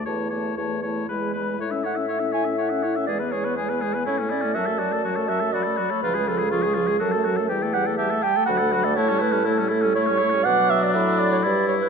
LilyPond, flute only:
\new Staff \with { instrumentName = "Flute" } { \time 3/4 \key a \major \tempo 4 = 122 a''8 a''8 a''8 a''8 b''8 b''8 | e''2.~ | e''4 gis''2 | a''2 b''4~ |
b''4 cis'''4 a''4 | \key a \mixolydian g''4 a''4 b''4 | a''4. r8 cis'''4 | d'''4 b''2 | }